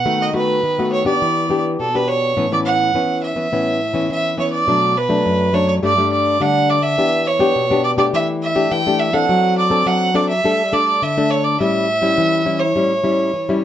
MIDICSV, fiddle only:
0, 0, Header, 1, 2, 480
1, 0, Start_track
1, 0, Tempo, 577478
1, 48, Time_signature, 4, 2, 24, 8
1, 11340, End_track
2, 0, Start_track
2, 0, Title_t, "Fiddle"
2, 0, Program_c, 0, 110
2, 0, Note_on_c, 0, 78, 87
2, 182, Note_on_c, 0, 75, 80
2, 195, Note_off_c, 0, 78, 0
2, 285, Note_off_c, 0, 75, 0
2, 290, Note_on_c, 0, 71, 79
2, 736, Note_off_c, 0, 71, 0
2, 768, Note_on_c, 0, 73, 83
2, 877, Note_off_c, 0, 73, 0
2, 882, Note_on_c, 0, 74, 86
2, 1332, Note_off_c, 0, 74, 0
2, 1497, Note_on_c, 0, 69, 77
2, 1623, Note_on_c, 0, 71, 77
2, 1636, Note_off_c, 0, 69, 0
2, 1727, Note_on_c, 0, 73, 85
2, 1739, Note_off_c, 0, 71, 0
2, 2087, Note_off_c, 0, 73, 0
2, 2101, Note_on_c, 0, 74, 80
2, 2152, Note_off_c, 0, 74, 0
2, 2205, Note_on_c, 0, 78, 89
2, 2652, Note_off_c, 0, 78, 0
2, 2685, Note_on_c, 0, 76, 79
2, 3372, Note_off_c, 0, 76, 0
2, 3420, Note_on_c, 0, 76, 82
2, 3637, Note_off_c, 0, 76, 0
2, 3652, Note_on_c, 0, 73, 63
2, 3755, Note_off_c, 0, 73, 0
2, 3760, Note_on_c, 0, 74, 84
2, 4129, Note_on_c, 0, 71, 78
2, 4142, Note_off_c, 0, 74, 0
2, 4607, Note_on_c, 0, 73, 80
2, 4619, Note_off_c, 0, 71, 0
2, 4716, Note_off_c, 0, 73, 0
2, 4721, Note_on_c, 0, 73, 70
2, 4776, Note_off_c, 0, 73, 0
2, 4853, Note_on_c, 0, 74, 82
2, 5073, Note_off_c, 0, 74, 0
2, 5085, Note_on_c, 0, 74, 82
2, 5332, Note_on_c, 0, 78, 95
2, 5344, Note_off_c, 0, 74, 0
2, 5567, Note_on_c, 0, 74, 82
2, 5580, Note_off_c, 0, 78, 0
2, 5671, Note_on_c, 0, 76, 97
2, 5684, Note_off_c, 0, 74, 0
2, 6040, Note_on_c, 0, 73, 85
2, 6052, Note_off_c, 0, 76, 0
2, 6511, Note_off_c, 0, 73, 0
2, 6516, Note_on_c, 0, 74, 78
2, 6572, Note_off_c, 0, 74, 0
2, 6632, Note_on_c, 0, 74, 82
2, 6689, Note_off_c, 0, 74, 0
2, 6767, Note_on_c, 0, 76, 90
2, 6874, Note_off_c, 0, 76, 0
2, 7000, Note_on_c, 0, 76, 93
2, 7244, Note_on_c, 0, 79, 90
2, 7257, Note_off_c, 0, 76, 0
2, 7476, Note_on_c, 0, 76, 88
2, 7489, Note_off_c, 0, 79, 0
2, 7590, Note_on_c, 0, 78, 101
2, 7603, Note_off_c, 0, 76, 0
2, 7954, Note_off_c, 0, 78, 0
2, 7959, Note_on_c, 0, 74, 86
2, 8204, Note_on_c, 0, 78, 91
2, 8216, Note_off_c, 0, 74, 0
2, 8440, Note_on_c, 0, 74, 83
2, 8453, Note_off_c, 0, 78, 0
2, 8544, Note_off_c, 0, 74, 0
2, 8549, Note_on_c, 0, 76, 93
2, 8919, Note_on_c, 0, 74, 89
2, 8931, Note_off_c, 0, 76, 0
2, 9164, Note_on_c, 0, 76, 92
2, 9177, Note_off_c, 0, 74, 0
2, 9395, Note_on_c, 0, 73, 85
2, 9407, Note_off_c, 0, 76, 0
2, 9507, Note_on_c, 0, 74, 75
2, 9519, Note_off_c, 0, 73, 0
2, 9634, Note_off_c, 0, 74, 0
2, 9640, Note_on_c, 0, 76, 104
2, 10469, Note_on_c, 0, 73, 80
2, 10482, Note_off_c, 0, 76, 0
2, 11316, Note_off_c, 0, 73, 0
2, 11340, End_track
0, 0, End_of_file